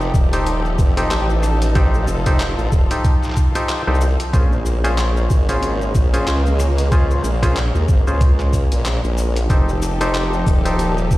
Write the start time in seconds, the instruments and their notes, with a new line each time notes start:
Already playing: wobble bass F1, string section F3 D#4 G4 A4, clav D#4 G4 A4 C5
0.01 shaker
0.14 wobble bass D#1, kick, shaker
0.33 clav D#4 G4 A4 C5, closed hi-hat, shaker
0.47 closed hi-hat, shaker
0.65 shaker
0.79 wobble bass F1, kick, shaker
0.97 clav D#4 G4 A4 C5, closed hi-hat, shaker
1.11 wobble bass A1, clap, closed hi-hat, shaker
1.30 shaker
1.43 cross-stick, shaker
1.62 closed hi-hat, shaker
1.75 clav D#4 G4 A4 C5, string section F4, kick, closed hi-hat, shaker
1.94 shaker
2.07 wobble bass F1, shaker
2.26 clav D#4 G4 A4 C5, kick, closed hi-hat, shaker
2.40 clap, closed hi-hat, shaker
2.58 wobble bass A1, shaker
2.72 wobble bass D#1, kick, shaker
2.91 clav D#4 G4 A4 C5, closed hi-hat, shaker
3.04 kick, closed hi-hat, shaker
3.23 clap, shaker
3.25 clap
3.30 clap
3.32 clap
3.34 kick, clap, shaker
3.55 clav D#4 G4 A4 C5, closed hi-hat, shaker
3.69 clap, closed hi-hat, shaker
3.87 wobble bass C2, clav D#4 G4 A4 C5
3.94 shaker
4.01 shaker
4.20 cross-stick, closed hi-hat
4.33 wobble bass A#1, string section G#3 A#3 C#4, clav C#4 F4 G#4 C5, kick, closed hi-hat, shaker
4.52 shaker
4.66 shaker
4.84 clav C#4 F4 G#4 C5, closed hi-hat, shaker
4.98 clap, closed hi-hat, shaker
5.17 shaker
5.30 wobble bass G#1, kick, shaker
5.49 clav C#4 F4 G#4 C5, closed hi-hat, shaker
5.63 closed hi-hat, shaker
5.81 shaker
5.95 wobble bass A#1, kick, shaker
6.14 clav C#4 F4 G#4 C5, closed hi-hat, shaker
6.27 wobble bass C#2, clap, closed hi-hat, shaker
6.46 shaker
6.60 cross-stick, shaker
6.78 closed hi-hat, shaker
6.92 clav C#4 F4 G#4 C5, kick, closed hi-hat, shaker
7.11 shaker
7.24 wobble bass A#1, shaker
7.43 clav C#4 F4 G#4 C5, kick, closed hi-hat, shaker
7.56 clap, closed hi-hat, shaker
7.75 wobble bass D#2, shaker
7.89 wobble bass G#1, kick, shaker
8.07 wobble bass C#2, clav C#4 F4 G#4 C5, shaker
8.21 kick, closed hi-hat, shaker
8.40 clap, shaker
8.53 kick, shaker
8.72 wobble bass A#1, closed hi-hat, shaker
8.85 clap, closed hi-hat, shaker
9.04 wobble bass A#1, shaker
9.18 shaker
9.36 cross-stick, closed hi-hat, shaker
9.50 wobble bass F1, string section F3 D#4 G4 A4, clav D#4 G4 A4 C5, kick, closed hi-hat, shaker
9.69 shaker
9.82 shaker
10.01 clav D#4 G4 A4 C5, closed hi-hat, shaker
10.14 clap, closed hi-hat, shaker
10.33 shaker
10.46 wobble bass D#1, kick, shaker
10.65 clav D#4 G4 A4 C5, closed hi-hat, shaker
10.79 closed hi-hat, shaker
10.98 shaker
11.11 wobble bass F1, kick, shaker